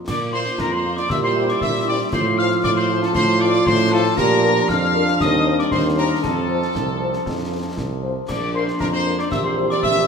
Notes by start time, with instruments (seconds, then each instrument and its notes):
0.07 tuba A#2, trombone section A#3 F4, trumpet section D5, glockenspiel D6, piccolo D6, concert bass drum, snare, crash
0.33 french horn section A#3 F4, trumpet section C5, glockenspiel C6, piccolo C6
0.46 snare
0.58 tuba F2, euphonium F4, trumpet section A#4, glockenspiel A#5, piccolo A#5, concert bass drum, snare
0.72 trumpet section C5, glockenspiel C6, piccolo C6
0.85 french horn section A#3 F4
0.96 trumpet section D5, glockenspiel D6, piccolo D6, snare
1.09 tuba A#2, trombone section G3 E4, euphonium G4, trumpet section E5, glockenspiel E6, piccolo E6, concert bass drum, snare
1.23 trumpet section C5, glockenspiel C6, piccolo C6
1.36 french horn section G3 C4 E4
1.48 trumpet section D5, glockenspiel D6, piccolo D6, snare
1.61 tuba A#2, trumpet section E5, piccolo E6, glockenspiel E6, concert bass drum, snare
1.87 french horn section G3 C4 E4, trumpet section D5, glockenspiel D6, piccolo D6
2.13 tuba A2, trombone section F3 F4, euphonium F4, trumpet section C5, glockenspiel C6, piccolo C6, concert bass drum, snare, crash
2.38 french horn section F3 C4 F4, trumpet section F5, piccolo F6, glockenspiel F6
2.51 snare
2.63 tuba A2, trumpet section D5, piccolo D6, glockenspiel D6, concert bass drum, snare
2.76 trumpet section C5, piccolo C6, glockenspiel C6
2.89 french horn section F3 C4 F4
3.02 trumpet section A4, piccolo A5, glockenspiel A5, snare
3.15 tuba A2, euphonium F4, trumpet section C5, piccolo C6, glockenspiel C6, concert bass drum, snare
3.40 french horn section F3 C4 F4, trumpet section D5, piccolo D6, glockenspiel D6
3.54 snare
3.66 tuba A2, trumpet section C5, piccolo C6, glockenspiel C6, concert bass drum, snare
3.91 french horn section F3 C4 F4, trumpet section A4, piccolo A5, glockenspiel A5
4.17 tuba A#2, trombone section F3 D4, euphonium G4, trumpet section A#4, piccolo A#5, glockenspiel A#5, concert bass drum, snare, crash
4.44 french horn section F3 D4 A#4
4.56 snare
4.68 tuba F2, euphonium F4, trumpet section F5, piccolo F6, glockenspiel F6, concert bass drum, snare
4.95 french horn section F3 D4 A#4, euphonium D4
5.08 snare
5.20 tuba D#2, trombone section G3 C4, trumpet section D#5, piccolo D#6, glockenspiel D#6, concert bass drum, snare
5.47 french horn section G3 C4 C5
5.59 trumpet section D5, piccolo D6, glockenspiel D6, snare
5.71 tuba D#2, trumpet section C5, piccolo C6, glockenspiel C6, concert bass drum, snare
5.97 french horn section G3 C4 C5, trumpet section A#4, glockenspiel A#5, piccolo A#5
6.23 tuba F2, trombone section F3 C4, euphonium C4, trumpet section A4, glockenspiel A5, piccolo A5, concert bass drum, snare, crash
6.49 french horn section F3 C4 C5
6.62 snare
6.75 tuba C2, concert bass drum, snare
7.01 french horn section F3 C4 C5
7.13 snare
7.26 tuba F2, concert bass drum, snare
7.52 french horn section F3 C4 C5
7.77 tuba C2, concert bass drum, snare
8.03 french horn section F3 C4 C5
8.28 tuba A#1, trombone section F3 A#3, euphonium D4, trumpet section D5, glockenspiel D6, piccolo D6, concert bass drum, snare, crash
8.54 french horn section F3 D4 A#4, trumpet section C5, glockenspiel C6, piccolo C6
8.68 snare
8.80 tuba F2, trumpet section A#4, piccolo A#5, glockenspiel A#5, concert bass drum, snare
8.93 trumpet section C5, glockenspiel C6, piccolo C6
9.06 french horn section F3 D4 A#4
9.19 trumpet section D5, glockenspiel D6, piccolo D6, snare
9.31 tuba A#1, trombone section E3 C4, euphonium G4, trumpet section E5, glockenspiel E6, piccolo E6, concert bass drum, snare
9.44 trumpet section C5, glockenspiel C6, piccolo C6
9.57 french horn section G3 E4 C5
9.70 trumpet section D5, glockenspiel D6, piccolo D6, snare
9.83 tuba A#1, trumpet section E5, glockenspiel E6, piccolo E6, concert bass drum, snare